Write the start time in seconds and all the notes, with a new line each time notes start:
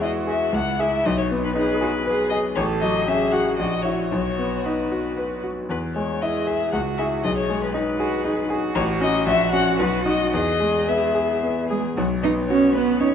Already playing: E2 G#3
0.02 E4 F#4 D#5
0.27 G#4 E5
0.53 C#2 E4 F#5
0.79 E4 G#4 E5
1.05 B1 D#4 D#5
1.18 C#5
1.31 B3
1.44 B4
1.55 D#4 G#4 B4
1.81 F#4 G#4
2.06 G#4 B4
2.29 G#4 D#5
2.55 A1 A4 C#5
2.80 F#3 D#5
3.08 C#4 G#4 E5
3.32 F#4 F#5
3.56 A#1 F#4 D#5
3.82 E4 F#4 C#5
4.10 B1 F#4 C#5
4.39 B3
4.66 D#4 B4
4.92 F#4
5.17 B4
5.44 F#4
5.69 E2 B4
5.94 G#3 C#5
6.22 E4 G#4 D#5
6.47 G#4 E5
6.72 C#2 F#4 F#5
6.97 E4 G#4 E5
7.23 B1 G#4 D#5
7.37 C#5
7.50 G#3
7.63 B4
7.74 D#4 B4
7.98 F#4 G#4
8.23 D#4 G#4
8.50 F#4 G#4
8.75 A1 C#5
9.01 C#4 F#4 D#5
9.25 A#1 F#4 E5
9.52 C#4 F#4 F#5
9.79 B1 B4
10.05 D#4 F#4 D#5
10.33 E2 G#4 D#5
10.60 G#3
10.88 B3 E5
11.15 G#4
11.43 B3
11.69 G#3 G#4
11.96 B1 F#3 F#4
12.23 B3 D#4 D#5
12.48 C#4 F#4 C#5
12.73 B3 B4
13.00 C#4 D#4 C#5